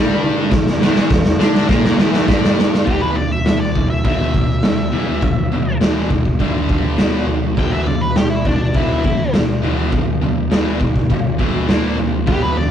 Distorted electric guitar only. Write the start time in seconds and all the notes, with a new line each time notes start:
Already playing: G2 G3
0.51 E2
0.81 E2 E3
1.11 E2
1.39 D3 D4
1.68 A#2 A#3
1.98 E2 E3
2.27 G2 G3
2.86 E2 B2 E3
3.16 E2 B2
3.45 E2 B2
3.75 E2 B2
4.04 E2 B2 E3
4.34 E2 B2
4.63 E2 B2
4.92 E2 B2 E3
5.22 E2 B2
5.52 E2 B2
5.81 E2 B2 E3
6.11 E2 B2
6.39 G2 D3 G3
6.69 G2 D3 G3
6.98 B2 F#3 B3
7.28 B2 F#3
7.57 E2 B2 E3
7.87 E2 B2
8.16 E2 B2
8.46 E2 B2
8.75 E2 B2 E3
9.06 E2 B2
9.34 E2 B2
9.62 E2 B2 E3
9.93 E2 B2
10.21 E2 B2
10.50 E2 B2 E3
10.80 E2 B2
11.10 E2 B2
11.38 E2 B2 E3
11.68 A#2 F3 A#3
11.98 A#2 F3
12.26 E2 B2 E3
12.56 E2 B2